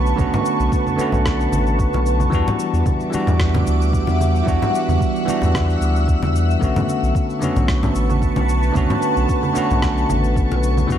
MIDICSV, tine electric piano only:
0, 0, Header, 1, 2, 480
1, 0, Start_track
1, 0, Key_signature, 2, "minor"
1, 0, Tempo, 535714
1, 165, Time_signature, 4, 2, 24, 8
1, 9842, End_track
2, 0, Start_track
2, 0, Title_t, "Tine electric piano"
2, 0, Program_c, 0, 4
2, 0, Control_c, 0, 64, 127
2, 0, Note_on_c, 0, 50, 77
2, 0, Note_on_c, 0, 57, 71
2, 0, Note_on_c, 0, 59, 69
2, 0, Note_on_c, 0, 61, 66
2, 0, Note_on_c, 0, 66, 82
2, 129, Note_off_c, 0, 50, 0
2, 134, Note_off_c, 0, 57, 0
2, 141, Note_off_c, 0, 59, 0
2, 142, Note_on_c, 0, 50, 81
2, 147, Note_off_c, 0, 61, 0
2, 152, Note_off_c, 0, 66, 0
2, 152, Note_on_c, 0, 57, 68
2, 164, Note_on_c, 0, 59, 71
2, 176, Note_on_c, 0, 61, 71
2, 188, Note_on_c, 0, 66, 89
2, 847, Note_off_c, 0, 50, 0
2, 852, Note_off_c, 0, 57, 0
2, 858, Note_off_c, 0, 59, 0
2, 863, Note_on_c, 0, 50, 77
2, 864, Note_off_c, 0, 61, 0
2, 870, Note_off_c, 0, 66, 0
2, 875, Note_on_c, 0, 57, 76
2, 887, Note_on_c, 0, 59, 73
2, 899, Note_on_c, 0, 61, 71
2, 907, Note_on_c, 0, 66, 85
2, 2047, Note_off_c, 0, 50, 0
2, 2053, Note_off_c, 0, 57, 0
2, 2059, Note_off_c, 0, 59, 0
2, 2059, Note_on_c, 0, 52, 83
2, 2065, Note_off_c, 0, 61, 0
2, 2069, Note_off_c, 0, 66, 0
2, 2071, Note_on_c, 0, 55, 77
2, 2080, Note_on_c, 0, 59, 72
2, 2093, Note_on_c, 0, 62, 75
2, 2097, Control_c, 0, 64, 0
2, 2103, Note_on_c, 0, 66, 90
2, 2277, Control_c, 0, 64, 127
2, 2764, Note_off_c, 0, 52, 0
2, 2771, Note_off_c, 0, 55, 0
2, 2774, Note_on_c, 0, 52, 76
2, 2776, Note_off_c, 0, 59, 0
2, 2782, Note_off_c, 0, 62, 0
2, 2786, Note_on_c, 0, 55, 72
2, 2787, Note_off_c, 0, 66, 0
2, 2796, Note_on_c, 0, 59, 72
2, 2807, Note_on_c, 0, 62, 71
2, 2817, Note_on_c, 0, 66, 88
2, 3960, Note_off_c, 0, 52, 0
2, 3969, Note_off_c, 0, 55, 0
2, 3971, Note_on_c, 0, 52, 79
2, 3974, Note_off_c, 0, 59, 0
2, 3979, Note_off_c, 0, 62, 0
2, 3984, Note_off_c, 0, 66, 0
2, 3984, Note_on_c, 0, 55, 73
2, 3997, Note_on_c, 0, 59, 72
2, 4006, Note_on_c, 0, 62, 74
2, 4017, Note_on_c, 0, 66, 87
2, 4681, Note_off_c, 0, 52, 0
2, 4688, Note_off_c, 0, 55, 0
2, 4694, Note_off_c, 0, 59, 0
2, 4699, Note_off_c, 0, 62, 0
2, 4703, Note_on_c, 0, 52, 78
2, 4704, Note_off_c, 0, 66, 0
2, 4714, Note_on_c, 0, 55, 70
2, 4723, Note_on_c, 0, 59, 71
2, 4734, Note_on_c, 0, 62, 72
2, 4747, Note_on_c, 0, 66, 83
2, 5887, Note_off_c, 0, 52, 0
2, 5893, Note_off_c, 0, 55, 0
2, 5897, Note_off_c, 0, 59, 0
2, 5903, Note_off_c, 0, 62, 0
2, 5909, Note_off_c, 0, 66, 0
2, 5909, Note_on_c, 0, 50, 75
2, 5919, Note_on_c, 0, 57, 71
2, 5931, Note_on_c, 0, 59, 70
2, 5935, Control_c, 0, 64, 0
2, 5942, Note_on_c, 0, 61, 67
2, 5949, Note_on_c, 0, 66, 84
2, 6082, Control_c, 0, 64, 127
2, 6611, Note_off_c, 0, 50, 0
2, 6615, Note_off_c, 0, 57, 0
2, 6621, Note_off_c, 0, 59, 0
2, 6623, Note_on_c, 0, 50, 73
2, 6627, Note_off_c, 0, 61, 0
2, 6630, Note_off_c, 0, 66, 0
2, 6635, Note_on_c, 0, 57, 71
2, 6647, Note_on_c, 0, 59, 72
2, 6655, Note_on_c, 0, 61, 72
2, 6667, Note_on_c, 0, 66, 85
2, 7803, Note_off_c, 0, 50, 0
2, 7813, Note_off_c, 0, 57, 0
2, 7814, Note_on_c, 0, 50, 78
2, 7819, Note_off_c, 0, 59, 0
2, 7824, Note_off_c, 0, 61, 0
2, 7827, Note_on_c, 0, 57, 69
2, 7829, Note_off_c, 0, 66, 0
2, 7834, Note_on_c, 0, 59, 69
2, 7848, Note_on_c, 0, 61, 73
2, 7859, Note_on_c, 0, 66, 94
2, 8523, Note_off_c, 0, 50, 0
2, 8529, Note_off_c, 0, 57, 0
2, 8533, Note_off_c, 0, 59, 0
2, 8539, Note_on_c, 0, 50, 80
2, 8540, Note_off_c, 0, 61, 0
2, 8545, Note_off_c, 0, 66, 0
2, 8549, Note_on_c, 0, 57, 72
2, 8560, Note_on_c, 0, 59, 72
2, 8569, Note_on_c, 0, 61, 75
2, 8582, Note_on_c, 0, 66, 89
2, 9725, Note_off_c, 0, 50, 0
2, 9730, Note_off_c, 0, 57, 0
2, 9736, Note_off_c, 0, 59, 0
2, 9741, Note_off_c, 0, 61, 0
2, 9741, Note_on_c, 0, 52, 84
2, 9747, Note_off_c, 0, 66, 0
2, 9750, Note_on_c, 0, 55, 72
2, 9761, Note_on_c, 0, 59, 73
2, 9771, Note_on_c, 0, 62, 74
2, 9777, Control_c, 0, 64, 0
2, 9785, Note_on_c, 0, 66, 89
2, 9842, Note_off_c, 0, 52, 0
2, 9842, Note_off_c, 0, 55, 0
2, 9842, Note_off_c, 0, 59, 0
2, 9842, Note_off_c, 0, 62, 0
2, 9842, Note_off_c, 0, 66, 0
2, 9842, End_track
0, 0, End_of_file